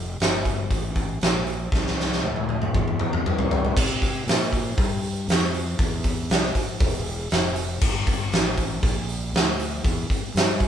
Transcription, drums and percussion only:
0.20 snare, open hi-hat
0.45 kick, open hi-hat
0.71 kick, open hi-hat
0.95 kick, open hi-hat
1.21 snare, open hi-hat
1.47 open hi-hat
1.72 kick, snare
1.87 snare
2.00 snare
2.12 snare
2.23 high tom
2.36 high tom
2.49 high tom
2.62 mid tom
2.74 kick, mid tom
2.88 mid tom
3.00 mid tom
3.13 mid tom
3.26 mid tom
3.39 floor tom
3.51 floor tom
3.65 floor tom
3.77 kick, crash
4.02 kick, open hi-hat
4.28 snare, open hi-hat
4.53 kick, open hi-hat
4.78 kick, open hi-hat
5.03 open hi-hat
5.28 snare, open hi-hat
5.54 open hi-hat
5.79 kick, open hi-hat
6.04 kick, open hi-hat
6.30 snare, open hi-hat
6.55 kick, open hi-hat
6.80 kick, open hi-hat
7.06 open hi-hat
7.30 snare, open hi-hat
7.56 open hi-hat
7.81 kick, crash
8.07 kick, open hi-hat
8.32 snare, open hi-hat
8.58 kick, open hi-hat
8.83 kick, open hi-hat
9.09 open hi-hat
9.34 snare, open hi-hat
9.60 open hi-hat
9.85 kick, open hi-hat
10.10 kick, open hi-hat
10.36 snare, open hi-hat
10.60 kick, open hi-hat

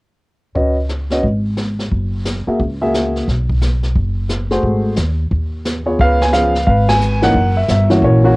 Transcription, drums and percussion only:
0.55 brush sweep, kick
0.89 snare, hi-hat pedal
1.10 snare
1.23 brush sweep, kick
1.57 snare, hi-hat pedal
1.79 snare
1.91 brush sweep, kick
2.25 snare, hi-hat pedal
2.59 brush sweep, kick
2.94 snare, hi-hat pedal
3.16 snare
3.28 brush sweep, kick, snare
3.49 kick
3.61 snare, hi-hat pedal
3.83 snare
3.95 brush sweep, kick
4.29 snare, hi-hat pedal
4.51 snare
4.63 brush sweep, kick
4.96 snare, hi-hat pedal
5.31 brush sweep, kick
5.65 snare, hi-hat pedal
5.99 brush sweep, kick
6.21 snare
6.33 snare, hi-hat pedal
6.55 snare
6.67 brush sweep, kick
6.89 snare, ride
7.01 hi-hat pedal
7.22 snare
7.34 brush sweep, kick
7.68 snare, hi-hat pedal
7.90 snare
8.02 brush sweep, kick

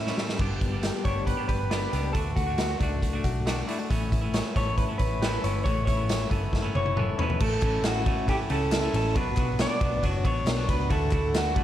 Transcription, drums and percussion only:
0.07 snare
0.18 snare
0.29 snare
0.39 kick, crash
0.61 kick, closed hi-hat
0.83 snare, closed hi-hat
1.05 kick, closed hi-hat
1.27 kick, closed hi-hat
1.49 kick, closed hi-hat
1.71 snare, closed hi-hat
1.93 closed hi-hat
2.15 kick, closed hi-hat
2.37 kick, closed hi-hat
2.58 snare, closed hi-hat
2.80 kick, closed hi-hat
3.02 kick, closed hi-hat
3.24 kick, closed hi-hat
3.47 snare, closed hi-hat
3.69 closed hi-hat
3.91 kick, closed hi-hat
4.12 kick, closed hi-hat
4.34 snare, closed hi-hat
4.56 kick, closed hi-hat
4.78 kick, closed hi-hat
4.99 kick, closed hi-hat
5.22 snare, closed hi-hat
5.44 closed hi-hat
5.66 kick, closed hi-hat
5.87 kick, closed hi-hat
6.09 snare, closed hi-hat
6.31 kick, closed hi-hat
6.53 kick, snare
6.75 high tom
6.86 high tom
6.97 mid tom
7.19 floor tom
7.30 floor tom
7.40 kick, crash
7.62 kick, clap, ride
7.84 snare, clap, ride
8.06 kick, ride
8.28 kick, ride
8.50 ride
8.72 snare, clap, ride
8.94 ride
9.16 kick, ride
9.37 kick, clap, ride
9.59 snare, clap, ride
9.81 kick, ride
10.03 kick, ride
10.25 kick, ride
10.47 snare, clap, ride
10.69 kick, ride
10.90 kick, ride
11.11 kick, clap, ride
11.34 snare, clap, ride
11.56 kick, ride

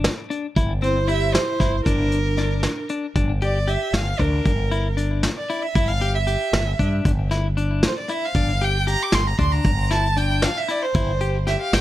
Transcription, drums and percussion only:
0.04 snare, closed hi-hat
0.31 closed hi-hat
0.56 kick, closed hi-hat
0.83 closed hi-hat
1.09 closed hi-hat
1.35 snare, closed hi-hat
1.60 kick, snare, closed hi-hat
1.86 kick, closed hi-hat
2.12 closed hi-hat
2.37 snare, closed hi-hat
2.63 snare, closed hi-hat
2.89 closed hi-hat
3.16 kick, closed hi-hat
3.42 closed hi-hat
3.68 closed hi-hat
3.94 snare, closed hi-hat
4.19 kick, closed hi-hat
4.45 kick, closed hi-hat
4.71 closed hi-hat
4.97 closed hi-hat
5.23 snare, closed hi-hat
5.50 closed hi-hat
5.75 kick, closed hi-hat
6.01 closed hi-hat
6.27 closed hi-hat
6.53 snare, closed hi-hat
6.79 kick, closed hi-hat
7.05 kick, closed hi-hat
7.31 snare, closed hi-hat
7.57 closed hi-hat
7.83 snare, closed hi-hat
8.08 closed hi-hat
8.34 kick, closed hi-hat
8.61 closed hi-hat
8.87 closed hi-hat
9.12 snare, closed hi-hat
9.38 kick, closed hi-hat
9.64 kick, closed hi-hat
9.91 snare, closed hi-hat
10.17 closed hi-hat
10.42 snare, closed hi-hat
10.69 closed hi-hat
10.94 kick, closed hi-hat
11.21 closed hi-hat
11.47 snare, closed hi-hat
11.73 snare, closed hi-hat

